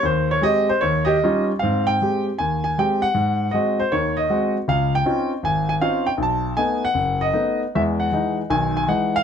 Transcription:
0.03 0.37 D#2 medium
0.03 0.29 C5 medium
0.31 0.43 C#5 medium
0.41 0.69 G#3 medium
0.41 0.70 C4 medium
0.41 0.70 G4 medium
0.41 0.68 D#5 loud
0.69 0.82 C5 medium
0.81 1.17 D#2 medium
0.81 1.07 C#5 medium
1.05 1.15 G4 medium
1.05 1.44 D#5 medium
1.24 1.51 G3 medium
1.24 1.51 C#4 medium
1.24 1.51 D#4 medium
1.24 1.51 F4 medium
1.59 1.97 G#2 medium
1.59 1.96 C4 medium
1.59 1.87 F5 medium
1.87 2.23 G5 medium
2.02 2.28 G#3 soft
2.02 2.28 C4 soft
2.02 2.29 G4 medium
2.39 2.73 D#2 medium
2.39 2.62 G#5 medium
2.64 2.78 G#5 medium
2.78 3.04 G#3 medium
2.78 3.05 C4 soft
2.78 3.05 G4 medium
2.78 3.02 G5 medium
3.02 3.55 F#5 loud
3.14 3.48 G#2 medium
3.51 3.80 G#3 medium
3.51 3.81 C4 soft
3.51 3.81 F#4 medium
3.51 3.79 D#5 medium
3.80 3.93 C5 medium
3.92 4.25 D#2 medium
3.92 4.25 D#3 medium
3.92 4.18 C#5 medium
4.17 4.52 D#5 medium
4.30 4.56 G#3 medium
4.30 4.57 C4 medium
4.30 4.56 F#4 medium
4.68 5.01 C#2 medium
4.68 4.92 F5 medium
4.95 5.29 G5 medium
5.06 5.32 C4 soft
5.06 5.32 C#4 soft
5.06 5.32 D#4 soft
5.06 5.33 F4 medium
5.43 5.76 G#1 medium
5.43 5.68 G#5 medium
5.69 5.74 G#5 medium
5.81 6.08 C4 medium
5.81 6.08 C#4 soft
5.81 6.08 D#4 soft
5.81 6.08 F4 medium
5.81 6.08 F5 medium
6.07 6.12 G5 medium
6.18 6.52 B1 medium
6.23 6.60 A5 medium
6.57 6.84 A3 soft
6.57 6.84 B3 soft
6.57 6.85 D#4 medium
6.57 6.83 G#5 medium
6.85 7.24 F#5 loud
6.94 7.29 F#1 medium
7.21 7.59 D#5 medium
7.34 7.62 A3 soft
7.34 7.62 B3 soft
7.34 7.62 D#4 medium
7.75 8.09 E2 medium
7.75 8.09 G#3 medium
7.75 7.81 E5 medium
8.00 8.36 F#5 medium
8.12 8.40 E3 soft
8.12 8.40 G#3 soft
8.12 8.41 D#4 medium
8.50 8.84 B1 medium
8.50 8.84 D#3 medium
8.50 8.75 G#5 medium
8.77 8.91 G#5 medium
8.88 9.16 E3 medium
8.88 9.16 G#3 soft
8.88 9.16 D#4 medium
8.88 9.16 F#5 medium
9.16 9.23 F5 loud

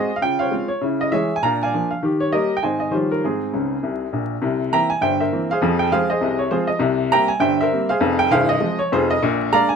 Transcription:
0.00 0.15 G#4 medium
0.00 0.15 C5 medium
0.00 0.16 D#5 medium
0.16 0.22 F5 medium
0.22 0.47 C#3 medium
0.22 0.40 F4 soft
0.22 0.40 G5 medium
0.39 0.68 C5 medium
0.39 0.67 C#5 medium
0.39 0.69 F5 medium
0.51 0.68 G#3 soft
0.51 0.68 C4 soft
0.51 0.68 F4 soft
0.68 0.81 C#5 medium
0.81 1.07 C#3 medium
0.81 1.00 E4 soft
1.01 1.12 D#5 medium
1.12 1.28 E3 soft
1.12 1.29 G#3 medium
1.12 1.29 C#4 soft
1.12 1.35 G#4 medium
1.12 1.34 C#5 medium
1.12 1.36 E5 medium
1.36 1.42 G#5 medium
1.43 1.68 A#2 medium
1.43 1.60 D4 soft
1.43 1.59 D5 medium
1.43 1.60 F5 medium
1.43 1.60 A#5 loud
1.63 1.90 D5 medium
1.63 1.89 F5 medium
1.63 1.91 G#5 medium
1.74 1.90 F3 soft
1.74 1.90 A#3 soft
1.74 1.90 D4 medium
1.91 2.02 F5 medium
2.03 2.28 D#3 medium
2.03 2.20 G4 medium
2.20 2.32 C#5 medium
2.32 2.49 G3 soft
2.32 2.49 A#3 soft
2.32 2.49 C#4 soft
2.32 2.55 G4 medium
2.32 2.55 A#4 medium
2.32 2.56 D#5 medium
2.57 2.62 G5 medium
2.63 2.88 G#2 medium
2.63 2.79 D#3 soft
2.63 2.79 G#3 soft
2.63 2.80 C4 soft
2.63 2.80 C5 medium
2.63 2.78 D#5 medium
2.63 2.80 G#5 medium
2.80 2.92 D#5 medium
2.91 3.17 D#3 medium
2.91 3.08 F3 soft
2.91 3.08 G3 soft
2.91 3.09 C#4 soft
2.91 3.09 F4 medium
2.91 3.09 G4 soft
2.91 3.09 C5 medium
3.12 3.23 A#4 medium
3.24 3.49 G#2 medium
3.24 4.10 C4 medium
3.24 4.10 D#4 soft
3.24 4.13 G#4 medium
3.53 3.75 C#2 medium
3.53 3.75 C#3 medium
3.83 4.05 C2 medium
3.83 4.05 C3 soft
4.13 4.35 A#1 medium
4.13 4.35 A#2 medium
4.42 4.67 C2 medium
4.42 4.67 C3 medium
4.72 4.88 E3 soft
4.72 4.89 A#3 soft
4.72 4.89 C4 soft
4.72 4.89 E5 medium
4.72 4.89 G5 medium
4.72 4.90 A#5 loud
4.90 5.02 G#5 medium
5.01 5.27 G1 medium
5.01 5.27 G2 medium
5.01 5.19 C5 medium
5.01 5.19 E5 medium
5.01 5.20 G5 medium
5.20 5.48 A#4 medium
5.20 5.48 C5 medium
5.20 5.50 E5 medium
5.32 5.49 E3 soft
5.32 5.49 A#3 soft
5.32 5.49 C4 soft
5.51 5.79 G#4 medium
5.51 5.79 C5 medium
5.51 5.80 F5 medium
5.62 5.87 F2 medium
5.62 5.87 F3 medium
5.79 5.91 G5 medium
5.91 6.08 F3 medium
5.91 6.09 G#3 soft
5.91 6.09 C4 medium
5.91 6.09 G#4 medium
5.91 6.09 C5 medium
5.91 6.10 F5 loud
6.10 6.38 G#4 medium
6.10 6.38 C5 medium
6.10 6.39 D#5 medium
6.21 6.47 C2 medium
6.21 6.47 C3 medium
6.39 6.51 C#5 medium
6.51 6.68 F3 soft
6.51 6.68 G#3 soft
6.51 6.68 C4 medium
6.51 6.68 F4 medium
6.51 6.69 G#4 medium
6.51 6.69 C5 medium
6.67 6.80 D#5 medium
6.79 7.06 C2 medium
6.79 7.06 C3 medium
7.12 7.28 G3 medium
7.12 7.29 A#3 medium
7.12 7.29 C4 medium
7.12 7.29 E5 medium
7.12 7.29 G5 medium
7.12 7.29 A#5 loud
7.28 7.41 G#5 medium
7.40 7.66 G1 medium
7.40 7.66 G2 medium
7.40 7.58 C5 medium
7.40 7.58 E5 medium
7.40 7.59 G5 loud
7.61 7.89 A#4 medium
7.61 7.88 C5 medium
7.61 7.90 E5 medium
7.72 7.88 G3 soft
7.72 7.89 A#3 soft
7.72 7.89 C4 medium
7.89 8.18 G#4 medium
7.89 8.17 C5 medium
7.89 8.19 F5 loud
8.00 8.25 F1 medium
8.00 8.25 F2 medium
8.19 8.31 G5 loud
8.31 8.55 C1 medium
8.31 8.55 C2 medium
8.31 8.48 G#4 medium
8.31 8.48 C5 medium
8.31 8.49 F5 loud
8.49 8.79 D#5 loud
8.60 8.77 F3 medium
8.60 8.77 G#3 medium
8.60 8.77 C4 medium
8.79 8.91 C#5 medium
8.92 9.16 F1 medium
8.92 9.16 F2 medium
8.92 9.09 F4 medium
8.92 9.09 G#4 medium
8.92 9.10 C5 loud
9.11 9.22 D#5 loud
9.22 9.47 A#1 medium
9.22 9.47 A#2 loud
9.52 9.68 G#3 medium
9.52 9.69 A#3 medium
9.52 9.69 D4 medium
9.52 9.69 D5 medium
9.52 9.69 F5 medium
9.52 9.70 A#5 loud
9.69 9.76 G#5 medium

